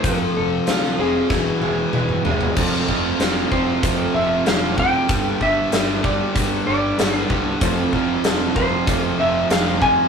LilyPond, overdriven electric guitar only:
\new Staff \with { instrumentName = "Overdriven electric guitar" } { \clef bass \time 4/4 \key f \lydian \tempo 4 = 95 f4 f'8 c'8 e8 gis8 e8 gis8 | <f, c f>8 <f, c f>8 <f, c f>8 <f, c f>8 <f, c f>8 <f, c f>8 <f, c f>8 <f, c f>8 | <g, d g>8 <g, d g>8 <g, d g>8 <g, d g>8 <g, d g>8 <g, d g>8 <g, d g>8 <g, d g>8 | <f, c f>8 <f, c f>8 <f, c f>8 <f, c f>8 <f, c f>8 <f, c f>8 <f, c f>8 <f, c f>8 | }